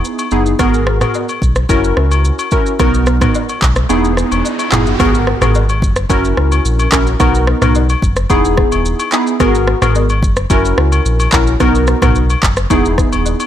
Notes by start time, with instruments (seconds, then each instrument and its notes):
Already playing: synth keys B3 D#4 E4 G#4
0.05 shaker
0.19 high agogo, shaker
0.31 sub bass F#1, synth keys B3 D#4 E4 G#4, shaker
0.46 shaker
0.59 sub bass G#1, synth keys B3 F#4 G#4 A#4, kick, cross-stick, high agogo, shaker
0.74 shaker
0.87 cross-stick
1.01 synth keys B3 F#4 G#4 A#4, cross-stick, mid tom, high agogo, shaker
1.14 low woodblock, shaker
1.29 high agogo, shaker
1.42 sub bass B1, kick, shaker
1.55 cross-stick, shaker
1.69 sub bass F#1, synth keys C#4 E4 F#4 A#4, kick, high agogo, shaker
1.84 shaker
1.97 sub bass C#2, cross-stick
2.11 high agogo, shaker
2.25 shaker
2.39 high agogo, shaker
2.51 synth keys C#4 E4 F#4 A#4, kick, shaker
2.66 shaker
2.79 sub bass B1, synth keys B3 D#4 F#4 A#4, kick, cross-stick, riser, high agogo, shaker
2.94 shaker
3.06 cross-stick, shaker
3.21 synth keys B3 D#4 F#4 A#4, kick, cross-stick, mid tom, high agogo, shaker
3.35 low woodblock, shaker
3.49 high agogo, shaker
3.62 sub bass B1, kick, clap, shaker
3.76 cross-stick, shaker
3.89 sub bass E1, synth keys B3 D#4 E4 G#4, high agogo, shaker
4.05 shaker
4.17 cross-stick, shaker
4.32 sub bass E1, high agogo, shaker
4.45 low woodblock, shaker
4.59 high agogo, shaker
4.71 sub bass F#1, synth keys B3 D#4 E4 G#4, clap, mid tom, shaker
4.87 shaker
5.00 sub bass G#1, synth keys B3 F#4 G#4 A#4, kick, cross-stick, impact, high agogo, shaker
5.15 shaker
5.27 cross-stick
5.41 sub bass G#1, synth keys B3 F#4 G#4 A#4, cross-stick, mid tom, high agogo, shaker
5.55 low woodblock, shaker
5.69 high agogo, shaker
5.82 sub bass F#1, kick, shaker
5.96 cross-stick, shaker
6.09 sub bass F#1, synth keys C#4 E4 F#4 A#4, kick, high agogo, shaker
6.25 shaker
6.37 sub bass C#2, cross-stick
6.52 high agogo, shaker
6.65 sub bass A#1, shaker
6.79 high agogo, shaker
6.92 sub bass A#1, synth keys C#4 E4 F#4 A#4, kick, clap, shaker
7.07 shaker
7.20 sub bass B1, synth keys B3 D#4 F#4 A#4, kick, cross-stick, high agogo, shaker
7.35 shaker
7.47 cross-stick
7.62 sub bass B1, synth keys B3 D#4 F#4 A#4, cross-stick, mid tom, high agogo, shaker
7.75 low woodblock, shaker
7.89 high agogo, shaker
8.02 sub bass F#1, kick, shaker
8.16 cross-stick, shaker
8.30 sub bass E1, synth keys B3 D#4 E4 G#4, kick, high agogo, shaker
8.45 shaker
8.57 kick, cross-stick
8.72 sub bass D#1, high agogo, shaker
8.85 shaker
9.00 high agogo, shaker
9.12 synth keys B3 D#4 E4 G#4, clap, shaker
9.27 shaker
9.40 sub bass G#1, synth keys B3 F#4 G#4 A#4, kick, cross-stick, high agogo, shaker
9.55 shaker
9.67 cross-stick
9.82 sub bass G#1, synth keys B3 F#4 G#4 A#4, cross-stick, mid tom, high agogo, shaker
9.95 low woodblock, shaker
10.09 high agogo, shaker
10.23 sub bass F#1, kick, shaker
10.36 cross-stick, shaker
10.50 sub bass F#1, synth keys C#4 E4 F#4 A#4, kick, high agogo, shaker
10.65 shaker
10.78 sub bass C#2, cross-stick
10.92 high agogo, shaker
11.05 sub bass A#1, shaker
11.20 high agogo, shaker
11.32 sub bass A#1, synth keys C#4 E4 F#4 A#4, kick, clap, shaker
11.47 shaker
11.60 sub bass B1, synth keys B3 D#4 F#4 A#4, kick, cross-stick, high agogo, shaker
11.75 shaker
11.87 cross-stick, shaker
12.02 sub bass B1, synth keys B3 D#4 F#4 A#4, kick, cross-stick, mid tom, high agogo, shaker
12.15 shaker
12.30 high agogo, shaker
12.43 sub bass F#1, kick, clap, shaker
12.57 cross-stick, shaker
12.70 sub bass E1, synth keys B3 D#4 E4 G#4, kick, high agogo, shaker
12.85 shaker
12.98 kick, cross-stick, shaker
13.12 sub bass D#1, high agogo, shaker
13.25 low woodblock, shaker
13.40 high agogo, shaker